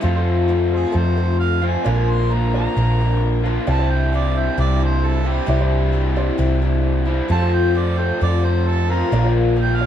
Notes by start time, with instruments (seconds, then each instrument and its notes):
0.01 overdriven electric guitar F2 C3 F3 A3 C4 F4, picked electric bass F2, twelve-string acoustic guitar F3 A3 C4 F4 A4, string section A3 C4 F4 A4, upright piano F4 A4 C5
0.16 upright piano F4 A4 C5
0.48 twelve-string acoustic guitar A3 C4 F4 A4
0.73 upright piano F4 A4 C5, harmonica G#4
0.92 picked electric bass F2, twelve-string acoustic guitar F3 A3 C4 F4 A4
0.96 harmonica C5
1.17 twelve-string acoustic guitar C4 F4 A4
1.39 harmonica F5
1.62 overdriven electric guitar F2 C3 F3 A3 C4 F4, twelve-string acoustic guitar C4 F4 A4
1.66 harmonica G#5
1.84 picked electric bass A#1, overdriven electric guitar A#2 D3 A#3 D4 F4, twelve-string acoustic guitar A#2 D3 F3 A#3 D4 A#4, string section A#3 D4 F4 A#4, upright piano F4 A#4 D5
1.96 upright piano F4 A#4 C5
2.10 harmonica C6
2.29 twelve-string acoustic guitar F3 A#3 D4 A#4, harmonica A#5
2.53 twelve-string acoustic guitar F3 A#3 D4 A#4, upright piano F4 A#4 D5, harmonica A#5
2.76 picked electric bass A#1, twelve-string acoustic guitar A#2 D3 F3 A#3 D4 A#4
3.01 twelve-string acoustic guitar F3 A#3 D4 A#4
3.44 overdriven electric guitar A#2 D3 A#3 D4 F4, twelve-string acoustic guitar F3 A#3 D4 A#4
3.66 picked electric bass C2, twelve-string acoustic guitar C3 G3 D4 E4 G4, overdriven electric guitar C3 E3 G3 C4, string section D4 E4 G4 C5, upright piano E4 C5 D5, harmonica A5
3.70 overdriven electric guitar E4
3.79 upright piano E4 C5 D5
3.91 harmonica G5
4.12 twelve-string acoustic guitar G3 D4 E4 G4, harmonica D5
4.36 upright piano E4 C5 E5
4.40 harmonica G5
4.57 picked electric bass C2, twelve-string acoustic guitar C3 G3 D4 E4 G4, harmonica D5
4.80 twelve-string acoustic guitar D4 E4 G4
4.84 harmonica C5
5.05 harmonica A4
5.24 overdriven electric guitar G3 C4 E4, twelve-string acoustic guitar D4 E4 G4, harmonica G4
5.28 overdriven electric guitar C3 E3
5.46 picked electric bass C2, twelve-string acoustic guitar C3 G3 D4 E4 G4, overdriven electric guitar C3 E3 G3, upright piano E4 C5 D5
5.51 overdriven electric guitar C4 E4
5.60 upright piano E4 C5 D5
5.92 twelve-string acoustic guitar G3 D4 E4 G4
6.16 twelve-string acoustic guitar D4 E4 G4, upright piano E4 C5 D5
6.38 picked electric bass C2, twelve-string acoustic guitar C3 G3 D4 E4 G4
6.62 twelve-string acoustic guitar D4 E4 G4
7.05 overdriven electric guitar E3 G3 C4 E4, twelve-string acoustic guitar D4 E4 G4
7.10 overdriven electric guitar C3
7.28 overdriven electric guitar F2 C3 F3 A3 C4, picked electric bass F2, twelve-string acoustic guitar F3 C4 F4 A4, string section C4 F4 A4 C5, upright piano F4, harmonica A5
7.32 overdriven electric guitar F4, upright piano A4 C5
7.42 upright piano F4 A4 C5
7.54 harmonica G5
7.75 twelve-string acoustic guitar F3 C4 F4 A4, harmonica D5
7.97 twelve-string acoustic guitar C4 F4 A4, upright piano F4 A4 C5, harmonica G5
8.21 picked electric bass F2, twelve-string acoustic guitar F3 C4 F4 A4, harmonica D5
8.45 twelve-string acoustic guitar C4 F4 A4, harmonica C5
8.68 harmonica A4
8.89 overdriven electric guitar F2 C3 F3 A3 C4 F4, twelve-string acoustic guitar C4 F4 A4, harmonica A#4
9.11 picked electric bass A#1, overdriven electric guitar A#2 D3 A#3 D4 F4, twelve-string acoustic guitar A#2 D3 F3 A#3 F4 A#4, string section D4 F4 A#4 D5, upright piano F4 A#4 D5
9.24 upright piano F4 A#4 D5
9.56 twelve-string acoustic guitar F3 A#3 F4 A#4
9.61 harmonica G5
9.75 harmonica F5
9.80 upright piano F4 A#4 D5